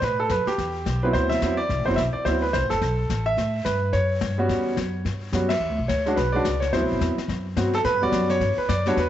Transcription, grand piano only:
0.03 0.18 B4 loud
0.20 0.31 A4 medium
0.31 0.46 B4 medium
0.47 1.05 G4 medium
1.03 1.40 F#3 medium
1.03 1.40 B3 medium
1.03 1.41 C4 medium
1.03 1.41 E4 medium
1.03 1.14 B4 medium
1.13 1.31 C5 loud
1.29 1.59 E5 loud
1.42 1.57 F#3 medium
1.42 1.58 B3 medium
1.42 1.58 C4 medium
1.42 1.58 E4 medium
1.57 1.87 D5 loud
1.86 1.97 F#3 medium
1.86 1.97 B3 medium
1.86 1.97 C4 medium
1.86 1.98 E4 medium
1.86 1.97 C5 medium
1.96 2.01 E5 loud
2.13 2.25 D5 medium
2.25 2.41 F#3 medium
2.25 2.41 B3 medium
2.25 2.42 C4 medium
2.25 2.42 E4 medium
2.25 2.41 C5 medium
2.42 2.53 B4 medium
2.53 2.71 C5 medium
2.70 3.28 A4 medium
3.26 3.62 E5 loud
3.65 3.91 B4 medium
3.93 5.29 C#5 medium
4.38 4.75 G3 medium
4.38 4.75 B3 medium
4.38 4.75 C#4 medium
4.38 4.76 F#4 medium
5.33 5.48 G3 medium
5.33 5.49 B3 medium
5.33 5.49 C#4 medium
5.33 5.49 F#4 medium
5.49 5.75 E5 medium
5.88 6.17 C#5 medium
6.06 6.16 G#3 medium
6.06 6.16 C#4 medium
6.06 6.17 D4 medium
6.06 6.17 F#4 medium
6.16 6.34 B4 medium
6.32 6.44 G#3 medium
6.32 6.44 C#4 medium
6.32 6.45 D4 medium
6.32 6.45 F#4 medium
6.32 6.62 D5 medium
6.60 6.71 C#5 medium
6.73 7.14 F#3 medium
6.73 7.15 B3 medium
6.73 7.15 C4 medium
6.73 7.15 E4 medium
6.73 6.99 C5 medium
7.56 7.72 F#3 medium
7.56 7.72 B3 medium
7.56 7.72 C4 soft
7.56 7.73 F#4 medium
7.75 7.79 A4 loud
7.85 8.00 B4 loud
8.01 8.38 G3 medium
8.01 8.39 B3 medium
8.01 8.39 C#4 medium
8.01 8.39 F#4 medium
8.01 8.31 D5 loud
8.30 8.59 C#5 loud
8.58 8.68 B4 medium
8.69 8.86 D5 medium
8.86 8.96 G3 medium
8.86 8.96 B3 medium
8.86 8.97 D4 medium
8.86 8.97 F#4 medium
8.86 8.98 C#5 loud
8.98 9.09 B4 loud

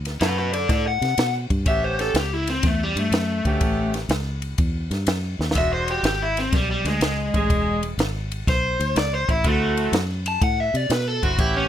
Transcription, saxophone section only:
1.65 2.27 B3 medium
1.65 2.27 C#4 medium
1.65 2.28 G4 medium
3.44 3.99 B3 medium
3.44 4.00 C#4 medium
3.44 4.00 G4 medium
5.55 6.17 G#3 medium
5.55 6.17 D4 medium
5.55 6.17 F#4 medium
7.33 7.88 G#3 medium
7.33 7.88 D4 medium
7.33 7.89 G#4 medium
9.43 10.05 C4 medium
9.43 10.05 E4 medium
9.43 10.06 F#4 medium
11.22 11.38 C4 medium
11.22 11.38 E4 medium
11.22 11.39 F#4 medium
11.38 11.68 B3 medium
11.38 11.68 C#4 medium
11.38 11.68 G4 loud

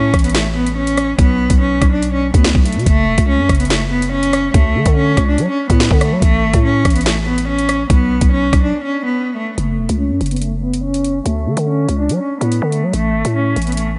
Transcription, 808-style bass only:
0.00 0.12 A2 loud
0.14 1.15 A1 loud
1.19 1.49 B1 loud
1.50 1.80 B1 loud
1.82 2.32 B1 loud
2.34 2.54 D2 loud
2.55 2.77 B1 loud
2.76 2.86 B2 loud
2.86 3.09 F#1 loud
3.07 3.17 E1 loud
3.18 3.40 C#2 loud
3.39 3.49 F#2 loud
3.49 4.50 F#1 loud
4.54 4.77 D2 loud
4.75 4.85 D3 loud
4.86 5.16 D3 loud
5.17 5.40 C#2 loud
5.38 5.48 F#3 loud
5.70 5.90 A2 loud
5.91 6.13 D3 loud
6.12 6.22 F#3 loud
6.22 6.45 A1 loud
6.43 6.53 G#1 loud
6.54 6.84 A2 loud
6.85 7.86 A1 loud
7.90 8.20 B1 loud
8.21 8.52 B1 loud
8.53 8.73 B1 loud
9.58 9.80 F#1 loud
9.79 9.89 E1 loud
9.89 10.12 C#2 loud
10.10 10.20 F#2 medium
10.21 11.22 F#1 loud
11.26 11.48 D2 loud
11.47 11.57 D3 loud
11.57 11.87 D3 medium
11.89 12.11 C#2 loud
12.10 12.20 F#3 loud
12.41 12.61 A2 loud
12.62 12.84 D3 loud
12.83 12.93 F#3 medium
12.93 13.16 A1 loud
13.14 13.24 G#1 loud
13.25 13.55 A2 medium
13.56 13.99 A1 loud

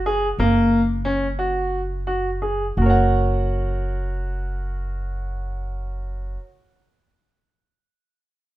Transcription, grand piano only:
0.06 0.26 G#4 medium
0.40 0.80 A#3 medium
1.05 1.25 C#4 medium
1.39 1.80 F#4 medium
2.07 2.28 F#4 medium
2.42 2.63 G#4 soft
2.78 6.36 F#4 soft
2.78 6.40 A#4 soft
2.86 6.44 C#5 soft
2.86 6.48 F#5 soft

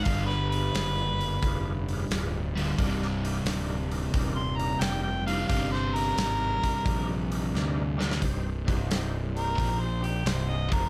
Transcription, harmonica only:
0.04 0.26 F5 loud
0.26 0.49 B4 loud
0.49 1.82 B4 loud
4.35 4.58 C6 loud
4.57 4.82 A#5 medium
4.81 5.02 G5 loud
5.02 5.25 G5 medium
5.26 5.47 F5 loud
5.48 5.71 F5 loud
5.72 5.96 C5 loud
5.95 7.27 A#4 loud
9.37 9.81 A#4 medium
9.80 10.06 C5 medium
10.05 10.29 G4 medium
10.28 10.51 C5 medium
10.49 10.71 D#5 medium
10.73 10.89 A#4 medium

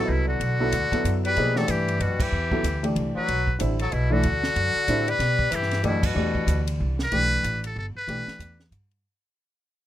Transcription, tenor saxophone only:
0.05 0.07 B2 soft
0.05 0.26 B2 medium
0.27 1.19 D3 medium
1.25 1.58 G3 medium
1.57 1.70 F#3 medium
1.68 2.02 E3 medium
2.00 2.22 B2 medium
2.21 2.84 E3 medium
3.15 3.57 F#3 medium
3.81 3.93 F#3 medium
3.92 4.14 B2 medium
4.12 5.10 D3 medium
5.08 5.53 G3 medium
5.51 5.83 E3 medium
5.83 6.04 B2 medium
6.04 6.68 B2 medium

